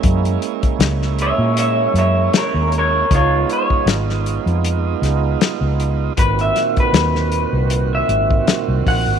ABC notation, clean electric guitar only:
X:1
M:4/4
L:1/16
Q:"Swing 16ths" 1/4=78
K:Gb
V:1 name="Clean electric guitar"
z6 [d_f]2 [df]2 [df]2 [Bd]2 [Bd]2 | [Fd]2 d2 z12 | c _f2 c6 f4- f g2 |]